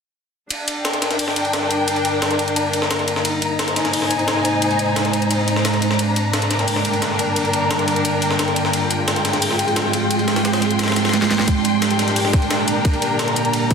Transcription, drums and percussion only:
0.51 closed hi-hat, ride
0.68 closed hi-hat, ride
0.85 snare, closed hi-hat, ride
0.93 closed hi-hat, ride
1.02 snare, closed hi-hat, ride
1.11 snare, closed hi-hat
1.19 closed hi-hat, open hi-hat
1.28 snare
1.36 closed hi-hat, ride
1.45 ride
1.53 snare, closed hi-hat, ride
1.71 closed hi-hat, ride
1.88 closed hi-hat, ride
1.96 ride
2.05 closed hi-hat, ride
2.22 snare, closed hi-hat, ride
2.31 closed hi-hat
2.39 closed hi-hat, ride
2.48 closed hi-hat
2.56 closed hi-hat, ride
2.73 closed hi-hat, ride
2.82 snare
2.91 snare, closed hi-hat, ride
2.99 ride
3.08 closed hi-hat, ride
3.16 snare
3.25 closed hi-hat, ride
3.42 closed hi-hat, ride
3.59 snare, closed hi-hat, ride
3.68 closed hi-hat, ride
3.76 snare, closed hi-hat, ride
3.85 snare, closed hi-hat
3.93 closed hi-hat, open hi-hat
4.02 snare
4.11 closed hi-hat, ride
4.19 ride
4.28 snare, closed hi-hat, ride
4.45 closed hi-hat, ride
4.62 closed hi-hat, ride
4.71 ride
4.79 closed hi-hat, ride
4.96 snare, closed hi-hat, ride
5.05 closed hi-hat
5.13 closed hi-hat, ride
5.22 closed hi-hat
5.31 closed hi-hat, ride
5.48 closed hi-hat, ride
5.56 snare
5.65 snare, closed hi-hat, ride
5.74 ride
5.82 closed hi-hat, ride
5.91 snare
5.99 closed hi-hat, ride
6.16 closed hi-hat, ride
6.33 snare, closed hi-hat, ride
6.42 closed hi-hat, ride
6.51 snare, closed hi-hat, ride
6.59 snare, closed hi-hat
6.68 closed hi-hat, open hi-hat
6.76 snare
6.85 closed hi-hat, ride
6.93 ride
7.02 snare, closed hi-hat, ride
7.19 closed hi-hat, ride
7.36 closed hi-hat, ride
7.45 ride
7.53 closed hi-hat, ride
7.71 snare, closed hi-hat, ride
7.79 closed hi-hat
7.88 closed hi-hat, ride
7.96 closed hi-hat
8.05 closed hi-hat, ride
8.22 closed hi-hat, ride
8.31 snare
8.39 snare, closed hi-hat, ride
8.48 ride
8.56 closed hi-hat, ride
8.65 snare
8.73 closed hi-hat, ride
8.91 closed hi-hat, ride
9.08 snare, closed hi-hat, ride
9.16 closed hi-hat, ride
9.25 snare, closed hi-hat, ride
9.33 snare, closed hi-hat
9.42 closed hi-hat, open hi-hat
9.51 snare
9.59 closed hi-hat, ride
9.68 ride
9.76 snare, closed hi-hat, ride
9.93 closed hi-hat, ride
10.11 closed hi-hat, ride
10.19 ride
10.28 snare, closed hi-hat, ride
10.36 snare, closed hi-hat, ride
10.45 snare, closed hi-hat, ride
10.53 snare, closed hi-hat, ride
10.62 snare, closed hi-hat, ride
10.71 closed hi-hat
10.79 snare, closed hi-hat, ride
10.83 snare, ride
10.88 snare, ride
10.92 snare, ride
10.96 snare, closed hi-hat, ride
11.05 snare, ride
11.09 snare, ride
11.13 snare, closed hi-hat, ride
11.22 snare, ride
11.31 snare, closed hi-hat
11.39 snare, ride
11.48 kick, closed hi-hat, ride
11.65 closed hi-hat, ride
11.82 snare, closed hi-hat, ride
11.91 closed hi-hat, ride
11.99 snare, closed hi-hat, ride
12.08 snare, closed hi-hat
12.16 closed hi-hat, open hi-hat
12.25 snare
12.33 kick, closed hi-hat, ride
12.42 ride
12.51 snare, closed hi-hat, ride
12.68 closed hi-hat, ride
12.85 kick, closed hi-hat, ride
12.93 ride
13.02 closed hi-hat, ride
13.19 snare, closed hi-hat, ride
13.28 closed hi-hat
13.36 closed hi-hat, ride
13.45 closed hi-hat
13.53 closed hi-hat, ride
13.71 kick, closed hi-hat, ride

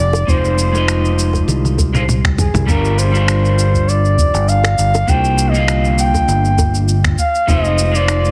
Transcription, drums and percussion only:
0.13 high bongo, cabasa
0.28 kick, cabasa
0.45 cabasa
0.58 cabasa
0.75 high bongo, cabasa
0.88 finger snap, cabasa
1.05 cabasa
1.19 cabasa
1.33 kick, high bongo, cabasa
1.48 high tom, cabasa
1.65 high tom, cabasa
1.78 kick, high bongo, cabasa
1.95 mid tom, cabasa
2.09 mid tom, cabasa
2.24 finger snap, kick, cabasa
2.38 kick, mid tom, cabasa
2.55 mid tom, cabasa
2.68 kick, cabasa
2.85 cabasa
2.99 cabasa
3.15 cabasa
3.28 finger snap, cabasa
3.45 cabasa
3.59 cabasa
3.74 kick, cabasa
3.89 cabasa
4.05 cabasa
4.18 kick, cabasa
4.34 cabasa
4.48 cabasa
4.64 finger snap, high bongo, cabasa
4.78 cabasa
4.94 high bongo, cabasa
5.08 kick, cabasa
5.24 cabasa
5.38 cabasa
5.54 cabasa
5.68 finger snap, cabasa
5.85 cabasa
5.98 cabasa
6.14 kick, high bongo, cabasa
6.28 cabasa
6.45 cabasa
6.58 kick, high bongo, cabasa
6.74 cabasa
6.88 cabasa
7.04 finger snap, kick, cabasa
7.18 kick, cabasa
7.35 cabasa
7.48 kick, cabasa
7.65 cabasa
7.78 cabasa
7.95 cabasa
8.08 finger snap, cabasa
8.25 cabasa

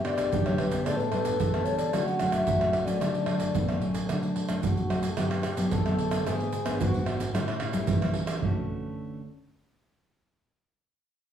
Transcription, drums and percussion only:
0.05 pandeiro, tamborim
0.18 pandeiro, tamborim, shaker, surdo
0.32 pandeiro, shaker, surdo
0.46 pandeiro, tamborim, shaker
0.58 pandeiro, tamborim
0.71 pandeiro, shaker, surdo
0.86 pandeiro, tamborim, shaker, surdo
1.00 pandeiro, shaker
1.12 pandeiro, tamborim
1.25 pandeiro, shaker, surdo
1.40 pandeiro, shaker, surdo
1.54 pandeiro, tamborim, shaker
1.65 pandeiro, shaker
1.78 pandeiro, shaker, surdo
1.93 pandeiro, tamborim, shaker, surdo
2.08 pandeiro, shaker
2.19 pandeiro, tamborim, shaker, surdo
2.32 pandeiro, tamborim, shaker, surdo
2.47 pandeiro, shaker, surdo
2.61 pandeiro, tamborim, shaker
2.73 pandeiro, tamborim
2.88 pandeiro, shaker, surdo
3.01 pandeiro, tamborim, shaker, surdo
3.14 pandeiro, shaker
3.26 pandeiro, tamborim
3.40 pandeiro, shaker, surdo
3.55 pandeiro, shaker, surdo
3.69 pandeiro, tamborim, shaker
3.81 pandeiro
3.94 pandeiro, shaker, surdo
4.09 pandeiro, tamborim, shaker, surdo
4.23 pandeiro, shaker
4.36 pandeiro
4.49 pandeiro, tamborim, shaker, surdo
4.63 pandeiro, shaker, surdo
4.77 pandeiro, shaker
4.90 pandeiro, tamborim
5.03 pandeiro, shaker, surdo
5.17 pandeiro, tamborim, shaker, surdo
5.31 pandeiro, tamborim, shaker
5.43 pandeiro, tamborim, shaker
5.57 pandeiro, shaker, surdo
5.71 pandeiro, shaker, surdo
5.86 pandeiro, tamborim, shaker
5.98 pandeiro
6.11 pandeiro, tamborim, shaker, surdo
6.26 pandeiro, tamborim, shaker, surdo
6.40 pandeiro, shaker
6.53 pandeiro, shaker
6.66 pandeiro, tamborim, shaker, surdo
6.81 pandeiro, shaker, surdo
6.94 pandeiro, shaker
7.06 pandeiro, tamborim
7.20 pandeiro, shaker, surdo
7.35 pandeiro, tamborim, shaker, surdo
7.48 pandeiro, tamborim, shaker
7.60 pandeiro, tamborim
7.73 pandeiro, shaker, surdo
7.87 pandeiro, shaker, surdo
8.02 pandeiro, tamborim, shaker
8.14 pandeiro
8.27 pandeiro, tamborim, shaker, surdo
8.42 surdo

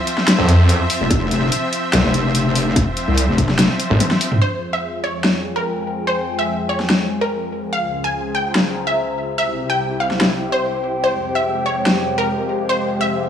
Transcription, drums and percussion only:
0.07 closed hi-hat
0.18 snare
0.28 snare, closed hi-hat
0.49 closed hi-hat
0.69 closed hi-hat
0.90 open hi-hat
1.11 kick, closed hi-hat
1.31 closed hi-hat
1.52 closed hi-hat
1.73 closed hi-hat
1.93 snare, closed hi-hat
2.14 closed hi-hat
2.35 closed hi-hat
2.55 open hi-hat
2.76 kick, closed hi-hat
2.97 closed hi-hat
3.18 closed hi-hat
3.38 kick, closed hi-hat
3.49 snare
3.59 snare, closed hi-hat
3.80 closed hi-hat
4.00 closed hi-hat, high tom
4.11 snare
4.21 open hi-hat
4.32 mid tom
5.24 snare
6.80 snare
6.90 snare
8.55 snare
10.11 snare
10.21 snare
11.86 snare

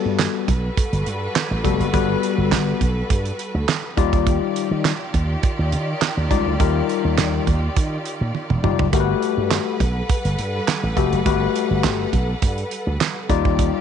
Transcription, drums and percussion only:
0.19 snare, clap, closed hi-hat
0.48 kick, closed hi-hat
0.77 kick, closed hi-hat
0.93 closed hi-hat
1.06 closed hi-hat
1.35 snare, clap, closed hi-hat
1.65 kick, closed hi-hat
1.81 closed hi-hat
1.94 kick, closed hi-hat
2.23 closed hi-hat
2.52 snare, clap, closed hi-hat
2.81 kick, closed hi-hat
3.10 kick, closed hi-hat
3.26 closed hi-hat
3.39 closed hi-hat
3.68 snare, clap, closed hi-hat
3.98 kick, closed hi-hat
4.13 kick, closed hi-hat
4.27 kick, closed hi-hat
4.56 closed hi-hat
4.85 snare, clap, closed hi-hat
5.14 kick, closed hi-hat
5.43 kick, closed hi-hat
5.72 closed hi-hat
6.01 snare, clap, closed hi-hat
6.31 kick, closed hi-hat
6.60 kick, closed hi-hat
6.89 closed hi-hat
7.18 snare, clap, closed hi-hat
7.47 kick, closed hi-hat
7.76 kick, closed hi-hat
8.05 closed hi-hat
8.35 high tom
8.50 mid tom
8.64 mid tom
8.79 floor tom
8.93 kick, closed hi-hat
9.22 closed hi-hat
9.51 snare, clap, closed hi-hat
9.80 kick, closed hi-hat
10.09 kick, closed hi-hat
10.25 closed hi-hat
10.39 closed hi-hat
10.67 snare, clap, closed hi-hat
10.97 kick, closed hi-hat
11.13 closed hi-hat
11.26 kick, closed hi-hat
11.56 closed hi-hat
11.84 snare, clap, closed hi-hat
12.13 kick, closed hi-hat
12.42 kick, closed hi-hat
12.58 closed hi-hat
12.71 closed hi-hat
13.00 snare, clap, closed hi-hat
13.30 kick, closed hi-hat
13.45 kick
13.59 kick, closed hi-hat

